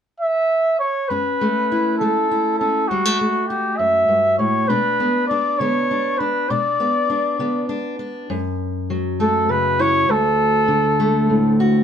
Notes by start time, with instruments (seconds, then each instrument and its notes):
0.20 trumpet E5
0.80 trumpet C#5
1.09 steel-string acoustic guitar F#2 C#4, trumpet B4
1.41 steel-string acoustic guitar A3
1.72 steel-string acoustic guitar E4
1.98 steel-string acoustic guitar F#3 A3, trumpet A4
2.31 steel-string acoustic guitar E4
2.58 steel-string acoustic guitar C#4, trumpet A4
2.88 steel-string acoustic guitar D2 G3, trumpet F#4
3.05 steel-string acoustic guitar A3
3.21 steel-string acoustic guitar A3
3.48 steel-string acoustic guitar F#4, trumpet G4
3.78 steel-string acoustic guitar F#2, trumpet E5
4.08 steel-string acoustic guitar G2
4.39 steel-string acoustic guitar A2, trumpet C#5
4.68 steel-string acoustic guitar B2 D4, trumpet B4
5.00 steel-string acoustic guitar B3
5.28 steel-string acoustic guitar D4, trumpet D5
5.59 steel-string acoustic guitar D3 B3, trumpet C#5
5.91 steel-string acoustic guitar D4
6.18 steel-string acoustic guitar D4, trumpet B4
6.50 steel-string acoustic guitar B2 D4, trumpet D5
6.80 steel-string acoustic guitar B3
7.10 steel-string acoustic guitar D4
7.39 steel-string acoustic guitar D3 B3
7.69 steel-string acoustic guitar D4
7.99 steel-string acoustic guitar D4
8.30 steel-string acoustic guitar F#2
8.90 steel-string acoustic guitar F#3
9.20 steel-string acoustic guitar A3, trumpet A4
9.49 steel-string acoustic guitar C#3, trumpet B4
9.79 steel-string acoustic guitar E4, trumpet C#5
10.09 steel-string acoustic guitar D2, trumpet A4
10.68 steel-string acoustic guitar D3
11.00 steel-string acoustic guitar A3
11.30 steel-string acoustic guitar A2
11.60 steel-string acoustic guitar F#4